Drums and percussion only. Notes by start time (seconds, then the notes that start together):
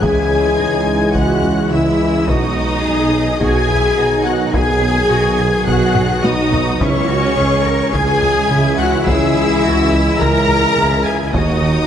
0.02 taiko
1.15 taiko
1.43 taiko low
2.28 taiko
3.41 taiko
3.69 taiko low
4.54 taiko
5.68 taiko
5.96 taiko low-mid
6.24 taiko high
6.53 taiko low
6.81 taiko
7.94 taiko
8.22 taiko low
9.07 taiko
10.21 taiko
10.49 taiko low
11.33 taiko